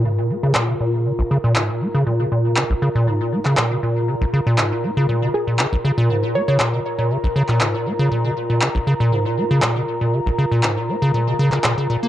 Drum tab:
CP |----x-------x---|----x------xx---|----x-------x---|----x------xx---|

CP |----x-------x---|----x------xx---|